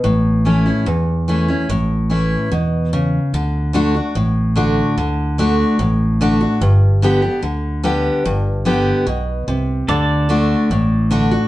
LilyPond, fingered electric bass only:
\new Staff \with { instrumentName = "Fingered electric bass" } { \clef bass \time 4/4 \key d \major \tempo 4 = 146 a,,2 e,2 | a,,2 e,2 | d,2 a,,2 | d,2 a,,2 |
g,,2 d,2 | g,,2 b,,4 c,4 | d,2 a,,2 | }